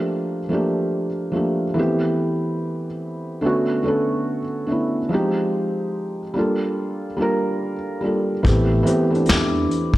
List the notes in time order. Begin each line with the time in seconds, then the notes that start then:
Already playing: F3 A3 A#3 D4 G4
0.49 F3 A3 A#3 D4
0.54 G4
1.32 F3 A3 A#3 D4
1.37 G4
1.74 E3 A3 B3 C4
1.79 G4
3.41 D3 A3 B3 C#4
3.46 F#4
3.83 D3 A3 B3 C#4
3.88 A4
4.67 D3 A3 B3 C#4
4.72 E4
5.09 F3 G#3 C4 D#4
5.14 G4
6.34 G3 A#3 D4
6.38 F4 A4
7.17 G3 A#3 D4
7.21 F4 A#4
8.01 G3 A#3 D4 F4
8.06 A4
8.43 A1 E3 A3 B3 C4, kick, closed hi-hat
8.48 G4
8.83 E3 A3 B3 C4, closed hi-hat
8.88 G4
9.11 E3 A3 B3 C4
9.15 D4, closed hi-hat
9.26 E2 D4, snare, closed hi-hat
9.71 closed hi-hat
9.94 kick